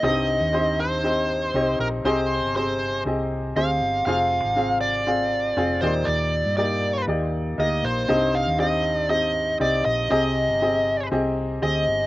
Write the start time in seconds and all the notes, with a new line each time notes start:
0.03 C2 G2 C4 D#4 G4 D#5
0.41 D#2
0.53 C4 D#4 G4 C5
0.80 C5
1.04 C4 D#4 G4 D#5
1.54 C2 C4 D#4 G4 D#5
1.79 A#1 A#4
2.04 C2 C3 C4 G4 G#4 C5 D#5
2.42 G1
2.56 C4 G4 G#4 C5
3.05 C2 C4 G4 G#4 D#5
3.56 D2 C4 G4 G#4 C5 F5
3.81 G1
4.06 F1 C3 C4 F4 G#4 F5
4.44 G#1
4.56 C4 F4 G#4 F5
4.81 D5
5.07 C4 F4 G#4 F5
5.57 F1 C4 F4 G#4 F5
5.81 D#2 A#2 A#3 D#4 G4 C5 D5
6.05 D#2 D5
6.45 G2
6.57 A#3 D#4 G4 D5
7.07 D#2 A#3 D#4 G4 D5
7.58 D2 A#3 D#4 G4 A#4 D#5
7.83 A#1 C5
8.08 C2 G2 C4 D#4 G4 D#5
8.35 F5
8.47 D#2
8.58 C4 D#4 G4 D#5 F5
8.98 D5
9.09 C4 D#4 G4 D#5
9.60 C2 C4 D#4 G4 D5 D#5
9.85 A#1 D#5
10.10 C2 C3 C4 G4 G#4 D#5
10.48 G1
10.62 C4 G4 G#4 D#5
11.11 C2 C4 G4 G#4 D#5
11.62 D2 C4 G4 G#4 D#5
11.87 G1